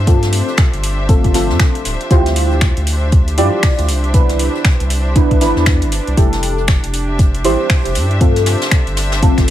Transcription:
Already playing: sub bass G2, string section D4 G4 C5 E5
0.07 synth stab C4 F4 A4, kick, closed hi-hat
0.23 snare, closed hi-hat
0.33 closed hi-hat, open hi-hat
0.48 closed hi-hat
0.57 finger snap, kick, snare, closed hi-hat
0.73 sub bass G1, closed hi-hat
0.83 closed hi-hat, open hi-hat
1.09 synth stab C4 F4 A4, kick, closed hi-hat
1.24 kick, closed hi-hat
1.34 synth stab C4 F4 A4, snare, closed hi-hat, open hi-hat
1.50 sub bass G2, snare
1.60 finger snap, kick, snare, closed hi-hat
1.75 closed hi-hat
1.85 sub bass D1, snare, closed hi-hat, open hi-hat
2.01 closed hi-hat
2.10 sub bass D2, string section D4, synth stab E4 F4 G4 C5, kick, closed hi-hat
2.26 snare, closed hi-hat
2.36 closed hi-hat, open hi-hat
2.51 closed hi-hat
2.61 finger snap, kick, snare, closed hi-hat
2.77 sub bass D2, closed hi-hat
2.87 closed hi-hat, open hi-hat
3.12 kick, closed hi-hat
3.28 closed hi-hat
3.38 sub bass G2, synth stab E4 F4 G4 D5, closed hi-hat, open hi-hat
3.63 finger snap, kick, snare, closed hi-hat, open hi-hat
3.79 sub bass D2, closed hi-hat
3.89 sub bass C2, closed hi-hat, open hi-hat
4.04 closed hi-hat
4.14 synth stab D4 E4 B4, kick, closed hi-hat
4.29 snare, closed hi-hat
4.39 closed hi-hat, open hi-hat
4.55 closed hi-hat
4.65 finger snap, kick, snare, closed hi-hat
4.80 sub bass C2, closed hi-hat
4.90 closed hi-hat, open hi-hat
5.15 synth stab D4 E4 B4, kick, closed hi-hat
5.31 sub bass C2, kick, closed hi-hat
5.41 sub bass G1, synth stab D4 E4 B4, snare, closed hi-hat, open hi-hat
5.57 sub bass E2, snare
5.66 finger snap, kick, snare, closed hi-hat
5.82 sub bass G1, closed hi-hat
5.92 snare, closed hi-hat, open hi-hat
6.07 sub bass C2, closed hi-hat
6.17 sub bass F1, synth stab E4 G4 A4, kick, closed hi-hat
6.33 snare, closed hi-hat
6.43 closed hi-hat, open hi-hat
6.58 closed hi-hat
6.67 finger snap, kick, snare, closed hi-hat
6.84 sub bass F1, string section G4, closed hi-hat
6.93 closed hi-hat, open hi-hat
7.10 string section C5 E5
7.19 kick, closed hi-hat
7.34 closed hi-hat
7.44 sub bass A1, synth stab E4 G4 C5, closed hi-hat, open hi-hat
7.70 finger snap, kick, snare, closed hi-hat, open hi-hat
7.85 sub bass F1, closed hi-hat
7.95 sub bass G2, closed hi-hat, open hi-hat
8.11 closed hi-hat
8.21 synth stab C4 F4 A4, kick, closed hi-hat
8.36 snare, closed hi-hat
8.46 snare, closed hi-hat, open hi-hat
8.62 snare, closed hi-hat
8.71 finger snap, kick, snare, closed hi-hat
8.87 sub bass G1, closed hi-hat
8.97 snare, closed hi-hat, open hi-hat
9.12 snare, closed hi-hat
9.22 synth stab C4 F4 A4, kick, closed hi-hat
9.38 sub bass G1, finger snap, kick, snare, closed hi-hat

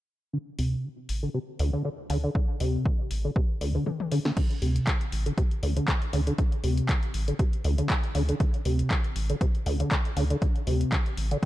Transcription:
0.33 acid bass D3
0.59 analog synth bass D2, acid bass C3, open hi-hat
0.84 acid bass D3
1.09 analog synth bass A1, open hi-hat
1.23 acid bass D3
1.34 acid bass C3
1.59 analog synth bass D2, acid bass D2, open hi-hat
1.73 acid bass D3
1.85 acid bass D3
2.10 analog synth bass D2, acid bass D3, open hi-hat
2.24 acid bass D3
2.35 acid bass D3, kick
2.60 analog synth bass D2, acid bass C3, open hi-hat
2.86 acid bass D3, kick
3.11 analog synth bass A1, open hi-hat
3.25 acid bass D3
3.36 acid bass C3, kick
3.61 analog synth bass D2, acid bass D2, open hi-hat
3.75 acid bass D3
3.86 acid bass D3, high tom
4.00 high tom
4.12 acid bass D3, open hi-hat
4.25 acid bass D3, snare
4.37 acid bass D3, kick, closed hi-hat, crash
4.51 closed hi-hat
4.62 analog synth bass D2, acid bass C3, open hi-hat
4.76 closed hi-hat
4.87 acid bass D3, kick, clap, closed hi-hat
5.01 closed hi-hat
5.12 analog synth bass A1, open hi-hat
5.26 acid bass D3, closed hi-hat
5.38 acid bass C3, kick, closed hi-hat
5.51 closed hi-hat
5.63 analog synth bass D2, acid bass D2, open hi-hat
5.77 acid bass D3, closed hi-hat
5.88 acid bass D3, kick, clap, closed hi-hat
6.02 closed hi-hat
6.13 analog synth bass D2, acid bass D3, open hi-hat
6.27 acid bass D3, closed hi-hat
6.38 acid bass D3, kick, closed hi-hat
6.52 closed hi-hat
6.64 analog synth bass D2, acid bass C3, open hi-hat
6.77 closed hi-hat
6.89 acid bass D3, kick, clap, closed hi-hat
7.03 closed hi-hat
7.14 analog synth bass A1, open hi-hat
7.28 acid bass D3, closed hi-hat
7.39 acid bass C3, kick, closed hi-hat
7.53 closed hi-hat
7.64 acid bass D2, analog synth bass D2, open hi-hat
7.78 acid bass D3, closed hi-hat
7.90 acid bass D3, kick, clap, closed hi-hat
8.03 closed hi-hat
8.15 analog synth bass D2, acid bass D3, open hi-hat
8.29 acid bass D3, closed hi-hat
8.40 acid bass D3, kick, closed hi-hat
8.54 closed hi-hat
8.65 analog synth bass D2, acid bass C3, open hi-hat
8.79 closed hi-hat
8.90 acid bass D3, kick, clap, closed hi-hat
9.04 closed hi-hat
9.16 analog synth bass A1, open hi-hat
9.29 acid bass D3, closed hi-hat
9.41 acid bass C3, kick, closed hi-hat
9.55 closed hi-hat
9.66 acid bass D2, analog synth bass D2, open hi-hat
9.80 acid bass D3, closed hi-hat
9.91 acid bass D3, kick, clap, closed hi-hat
10.05 closed hi-hat
10.16 analog synth bass D2, acid bass D3, open hi-hat
10.30 acid bass D3, closed hi-hat
10.42 acid bass D3, kick, closed hi-hat
10.56 closed hi-hat
10.67 analog synth bass D2, acid bass C3, open hi-hat
10.81 closed hi-hat
10.92 acid bass D3, kick, clap, closed hi-hat
11.06 closed hi-hat
11.17 analog synth bass A1, open hi-hat
11.31 acid bass D3, closed hi-hat

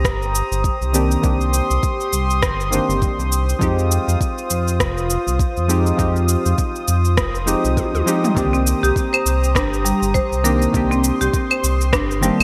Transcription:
Already playing: synth stab D#3 A#3 C4 D4 G4, analog synth pad G4 C5 A#5 D#6
0.05 analog synth bass G1, kick, cross-stick, cabasa
0.22 cabasa
0.35 cabasa
0.52 analog synth bass G1, cabasa
0.64 kick, cabasa
0.81 analog synth bass C2, cabasa
0.93 synth stab D#3 A#3 C4 D4 G4, cabasa
1.11 cabasa
1.22 analog synth bass C2, synth stab D#3 A#3 C4 D4 G4, analog synth pad C6, kick, cabasa
1.41 cabasa
1.54 cabasa
1.70 analog synth bass C2, cabasa
1.83 kick, cabasa
2.00 cabasa
2.13 analog synth bass C2, cabasa
2.30 cabasa
2.43 analog synth bass G1, kick, cross-stick, cabasa
2.60 cabasa
2.70 synth stab D#3 A#3 C4 D4, cabasa
2.75 synth stab G4
2.89 analog synth bass G1, cabasa
3.02 kick, cabasa
3.19 analog synth bass C2, cabasa
3.32 cabasa
3.49 cabasa
3.59 analog synth bass F2, synth stab F3 G#3 C4 D#4, analog synth pad F4 D#6, kick, cabasa
3.63 synth stab G4
3.79 cabasa
3.92 cabasa
4.08 analog synth bass F2, cabasa
4.21 kick, cabasa
4.38 cabasa
4.50 analog synth bass F2, cabasa
4.68 cabasa
4.80 analog synth bass F1, kick, cross-stick, cabasa
4.98 cabasa
5.10 cabasa
5.27 analog synth bass C2, cabasa
5.39 kick, cabasa
5.57 analog synth bass F2, cabasa
5.68 synth stab F3 G#3 C4 D#4 G4, cabasa
5.86 cabasa
5.96 analog synth bass F2, synth stab F3 G#3 C4 D#4 G4, kick, cabasa
6.16 cabasa
6.29 cabasa
6.46 analog synth bass F2, cabasa
6.58 kick, cabasa
6.76 cabasa
6.88 analog synth bass F2, cabasa
7.05 cabasa
7.17 analog synth bass F1, kick, cross-stick, cabasa
7.35 cabasa
7.46 synth stab F3 G#3 C4 D#4 G4, cabasa
7.64 analog synth bass C2, cabasa
7.77 kick, high tom, cabasa
7.94 analog synth bass D#2, high tom, cabasa
8.06 synth stab F3 G#3 C4 D#4 G4, cabasa
8.24 mid tom, cabasa
8.34 analog synth bass C2, synth stab D#3 A#3 C4 D4 G4, analog synth pad G4 A#5, kick, cabasa
8.53 marimba C4, cabasa
8.67 cabasa
8.83 analog synth bass C2, marimba G4, cabasa
8.96 kick, cabasa
9.13 marimba C5, cabasa, claves
9.26 analog synth bass C2, cabasa
9.44 cabasa
9.55 analog synth bass G1, marimba D4, kick, cross-stick, cabasa
9.74 cabasa
9.85 marimba G3, cabasa
10.02 analog synth bass G1, cabasa
10.14 marimba C5, kick, cabasa
10.32 analog synth bass C2, cabasa
10.43 synth stab D#3 A#3 C4 D4 G4, marimba A#4, cabasa
10.62 cabasa
10.72 analog synth bass C2, synth stab D#3 A#3 C4 D4, analog synth pad C6, kick, cabasa
10.76 synth stab G4
10.91 marimba C4, cabasa
11.04 cabasa
11.21 analog synth bass C2, marimba G4, cabasa
11.34 kick, cabasa
11.51 marimba C5, cabasa, claves
11.63 analog synth bass C2, cabasa
11.81 cabasa
11.93 analog synth bass G1, marimba D4, kick, cross-stick, cabasa
12.11 cabasa
12.21 synth stab D#3 A#3 C4 D4 G4, marimba G3, cabasa
12.40 analog synth bass G1, claves

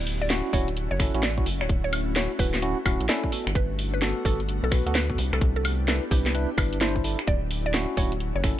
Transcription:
Already playing: analog synth bass D1, ambient pad A3 C#4 E4 F#4
0.07 open hi-hat
0.22 synth pluck D5
0.30 tine electric piano C#4 E4 F#4, snare, closed hi-hat
0.53 analog synth bass D1, tine electric piano C#4 E4 F#4, synth pluck C#5, kick, open hi-hat
0.68 closed hi-hat
0.77 closed hi-hat
0.91 analog synth bass F#1, synth pluck C#5
1.00 tine electric piano C#4 E4 A4, finger snap, kick, open hi-hat
1.14 analog synth bass A1, tine electric piano C#4 E4 F#4, closed hi-hat
1.23 synth pluck D5, snare, closed hi-hat
1.38 tine electric piano C#4 E4 F#4, kick
1.46 analog synth bass F#1, open hi-hat
1.61 analog synth bass D1, synth pluck C#5, finger snap, closed hi-hat
1.69 analog synth bass D1, kick, closed hi-hat
1.84 synth pluck C#5
1.93 open hi-hat, high woodblock
2.16 tine electric piano C#4 E4 F#4, synth pluck C#5, snare, closed hi-hat
2.39 analog synth bass D1, tine electric piano C#4 E4 F#4, synth pluck B4, kick, open hi-hat
2.54 snare, closed hi-hat
2.62 tine electric piano C#4 E4 F#4, closed hi-hat
2.86 analog synth bass D1, tine electric piano C#4 E4 F#4, finger snap, kick, open hi-hat, high woodblock
3.00 analog synth bass A1, closed hi-hat
3.09 tine electric piano C#4 E4 A4, synth pluck D5, snare, closed hi-hat
3.24 kick
3.32 tine electric piano B3 F#4 A4, ambient pad B3 D4 F#4, open hi-hat
3.47 analog synth bass G1, finger snap, closed hi-hat
3.55 analog synth bass G1, synth pluck B4, kick, closed hi-hat
3.79 open hi-hat
3.94 synth pluck B4
4.02 tine electric piano B3 F#4 A4, snare, closed hi-hat
4.25 analog synth bass G1, tine electric piano B3 F#4 A4, synth pluck A4, kick, open hi-hat
4.40 closed hi-hat
4.49 closed hi-hat
4.63 analog synth bass B1, synth pluck A4
4.72 tine electric piano B3 F#4 B4, finger snap, kick, open hi-hat
4.86 analog synth bass D2, tine electric piano B3 F#4 A4, closed hi-hat
4.95 synth pluck B4, snare, closed hi-hat
5.10 tine electric piano B3 F#4 A4, kick
5.18 analog synth bass C2, ambient pad E4 G4, open hi-hat
5.33 analog synth bass C2, synth pluck A4, finger snap, closed hi-hat
5.41 analog synth bass C2, kick, closed hi-hat
5.56 synth pluck A4
5.65 open hi-hat, high woodblock
5.88 tine electric piano D4 E4 B4, synth pluck A4, snare, closed hi-hat
6.11 analog synth bass C2, tine electric piano D4 E4 B4, synth pluck G4, kick, open hi-hat
6.26 snare, closed hi-hat
6.35 tine electric piano D4 E4 B4, closed hi-hat
6.58 analog synth bass G1, tine electric piano D4 E4 B4, finger snap, kick, open hi-hat, high woodblock
6.73 closed hi-hat
6.81 tine electric piano D4 E4 C5, synth pluck E4, snare, closed hi-hat
6.96 kick
7.04 tine electric piano D4 E4 A4, open hi-hat
7.19 finger snap, closed hi-hat
7.27 analog synth bass D1, ambient pad A3 C#4 F#4, synth pluck D5, kick, closed hi-hat
7.51 open hi-hat
7.66 synth pluck D5
7.74 tine electric piano C#4 E4 F#4, snare, closed hi-hat
7.97 analog synth bass D1, tine electric piano C#4 E4 F#4, synth pluck C#5, kick, open hi-hat
8.12 closed hi-hat
8.20 closed hi-hat
8.35 analog synth bass F#1, synth pluck C#5
8.44 tine electric piano C#4 E4 A4, finger snap, kick, open hi-hat

